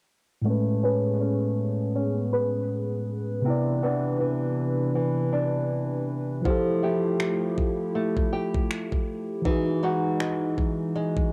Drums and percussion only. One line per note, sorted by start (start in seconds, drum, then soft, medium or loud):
6.45 kick loud
7.20 finger snap loud
7.58 kick medium
8.17 kick medium
8.55 kick medium
8.71 finger snap loud
8.92 kick medium
9.45 kick medium
10.20 finger snap loud
10.58 kick medium
11.17 kick medium